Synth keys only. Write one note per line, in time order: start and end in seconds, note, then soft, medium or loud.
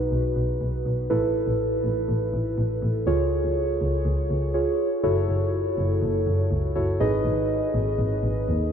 0.00 1.06 D#4 medium
0.00 1.06 F#4 medium
0.00 1.06 B4 medium
1.10 3.03 E4 medium
1.10 3.03 A4 medium
1.10 3.03 B4 medium
3.07 4.51 F4 medium
3.07 4.51 G#4 medium
3.07 4.51 C#5 medium
4.54 5.03 F4 medium
4.54 5.03 G#4 medium
4.54 5.02 C#5 medium
5.03 6.72 E4 medium
5.03 6.72 F#4 medium
5.03 6.72 A4 medium
5.03 6.72 C#5 medium
6.75 7.00 E4 medium
6.75 7.00 F#4 medium
6.75 7.00 A4 medium
6.75 7.00 C#5 medium
7.00 8.72 D#4 medium
7.00 8.72 G#4 medium
7.00 8.72 B4 medium
7.00 8.72 D#5 medium